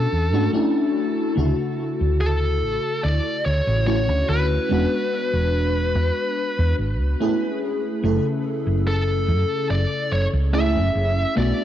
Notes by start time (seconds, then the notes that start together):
Already playing: A3 C#4 D4 F#4 A4
0.12 E2
0.33 G#2 A3 C#4 D4 F#4
0.53 A3 C#4 D4 E4
1.35 D2 C#3 A3 E4 F#4
2.01 D2
2.21 A4
2.63 A1
3.04 D2 D5
3.45 D2 C#5
3.67 A1
3.86 A3 C#4 E4 F#4 C#5
4.09 D2
4.29 D2 B4
4.69 E1 G#3 B3 D4 F#4
5.33 E1
5.96 E2
6.59 E2
6.78 G#1
7.00 C#2
7.20 A3 C#4 E4 G#4
8.03 F#1 C#3 A3 E4 A4
8.67 F#1
8.88 A4
9.28 F#2
9.70 F#1 D5
10.12 F#1 C#5
10.33 C#2
10.53 A3 C#4 E4 G#4 E5
10.75 F#1
10.95 F#1
11.36 B1 A3 B3 D4 F#4 D5